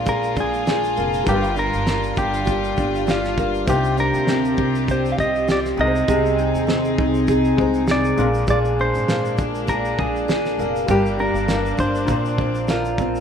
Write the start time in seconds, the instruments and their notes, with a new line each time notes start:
Already playing: upright bass A#1, steel-string acoustic guitar A#2 A#3 D4, felt piano G#3 D4 A#4, string section G#3 A#3 F4
0.06 steel-string acoustic guitar G#4, clean electric guitar A#4, kick, shaker
0.23 shaker
0.36 upright bass A#1, steel-string acoustic guitar D4, kick, shaker
0.40 clean electric guitar G#4
0.53 shaker
0.67 steel-string acoustic guitar G#4, snare, shaker
0.84 shaker
0.97 upright bass F1, steel-string acoustic guitar A#3, shaker
1.13 shaker
1.24 upright bass G1, steel-string acoustic guitar G2, felt piano G3 D4, kick, shaker
1.28 string section G3, steel-string acoustic guitar G4, clean electric guitar G4, felt piano A#4
1.44 shaker
1.56 steel-string acoustic guitar D4, clean electric guitar A#4, shaker
1.73 upright bass G1, shaker
1.87 steel-string acoustic guitar A#3, snare, shaker
2.03 shaker
2.16 upright bass G1, steel-string acoustic guitar D4, clean electric guitar G4, kick, shaker
2.34 shaker
2.45 steel-string acoustic guitar G4, kick, shaker
2.64 shaker
2.77 upright bass G1, steel-string acoustic guitar D4, kick, shaker
2.95 shaker
3.07 clean electric guitar F4, steel-string acoustic guitar G4, snare, shaker
3.25 snare, shaker
3.38 steel-string acoustic guitar A#3, kick, shaker
3.54 shaker
3.66 upright bass C2, string section C3 C4 G4, steel-string acoustic guitar C3 G4, felt piano C4 D#4, clean electric guitar G4, kick, shaker
3.70 felt piano C5
3.84 shaker
3.97 steel-string acoustic guitar D4, clean electric guitar A#4, shaker
4.14 upright bass D2, shaker
4.27 steel-string acoustic guitar C4, snare, shaker
4.45 shaker
4.57 upright bass C2, steel-string acoustic guitar D4, kick
4.75 shaker
4.88 steel-string acoustic guitar G4, clean electric guitar C5, kick, shaker
5.05 shaker
5.12 clean electric guitar F5
5.18 upright bass C2, clean electric guitar D#5, kick, shaker
5.35 shaker
5.48 steel-string acoustic guitar G4, clean electric guitar D5, snare, shaker
5.65 snare, shaker
5.77 upright bass C2, steel-string acoustic guitar C3, felt piano G#3 D#4, string section D#4 G#4, clean electric guitar D#5
5.81 felt piano A#4
5.87 felt piano C5
5.95 shaker
6.08 upright bass C2, steel-string acoustic guitar C3 G#4, kick, shaker
6.26 shaker
6.39 steel-string acoustic guitar D#4, shaker
6.55 upright bass D#2, shaker
6.67 steel-string acoustic guitar C4, snare, shaker
6.85 shaker
6.98 upright bass C2, steel-string acoustic guitar D#4, kick
7.14 shaker
7.28 steel-string acoustic guitar G#4, kick, shaker
7.45 shaker
7.57 upright bass C2, felt piano G#3 D#4 C5, steel-string acoustic guitar D#4, kick
7.74 shaker
7.87 steel-string acoustic guitar G#4, snare, shaker
7.91 clean electric guitar D5
8.04 shaker
8.16 upright bass A#1, steel-string acoustic guitar A#2, felt piano G#3 D4, string section G#3 A#3 D4, shaker
8.20 felt piano A#4
8.34 shaker
8.47 steel-string acoustic guitar A#2 G#4, clean electric guitar D5, kick, shaker
8.65 shaker
8.79 steel-string acoustic guitar D4, clean electric guitar C5
8.95 upright bass G#1, shaker
9.08 steel-string acoustic guitar A#3, snare, shaker
9.25 shaker
9.38 upright bass A#1, steel-string acoustic guitar D4, kick, shaker
9.55 shaker
9.67 steel-string acoustic guitar G#4, clean electric guitar A#4, kick, shaker
9.85 shaker
9.98 upright bass A#1, steel-string acoustic guitar D4, clean electric guitar G#4, kick
10.16 shaker
10.28 steel-string acoustic guitar G#4, snare, shaker
10.45 snare, shaker
10.58 upright bass F1, steel-string acoustic guitar A#3, shaker
10.76 shaker
10.86 upright bass G1, steel-string acoustic guitar G2 G4, felt piano G3 D4 A#4, string section G3 D4, kick, shaker
10.91 clean electric guitar G4
11.06 shaker
11.19 steel-string acoustic guitar D4, clean electric guitar A#4
11.34 upright bass G1, shaker
11.48 steel-string acoustic guitar A#3, snare, shaker
11.66 shaker
11.77 upright bass G1, steel-string acoustic guitar D4, clean electric guitar C5, kick, shaker
11.95 shaker
12.05 upright bass A#1, steel-string acoustic guitar A#2, felt piano A#3 D4 C5, kick, shaker
12.10 string section C4
12.25 shaker
12.38 upright bass A#1, steel-string acoustic guitar D4, kick
12.55 shaker
12.68 clean electric guitar F4, steel-string acoustic guitar A#4, snare, shaker
12.85 shaker
12.98 steel-string acoustic guitar C4, kick, shaker
13.15 shaker